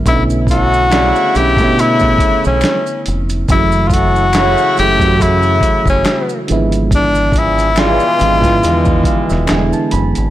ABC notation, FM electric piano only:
X:1
M:4/4
L:1/16
Q:"Swing 16ths" 1/4=70
K:Bm
V:1 name="FM electric piano"
z16 | z16 | z8 z2 =f e ^g a b2 |]
V:2 name="FM electric piano" clef=bass
[D,A,B,C^DE]4- [=D,A,B,C^DE] z [=D,A,B,CE] [D,A,B,CE]6 z3 | [C,E,F,^G,A,E]4- [C,E,F,G,A,E] z [C,E,F,A,E] [C,E,F,A,F]6 z [D,=F,G,B,E]2- | [D,=F,^G,B,E]4 z2 [D,F,G,B,=F] [D,E,F,G,B,]4- [D,E,F,G,B,] [D,E,=G,^G,B,E]3 z |]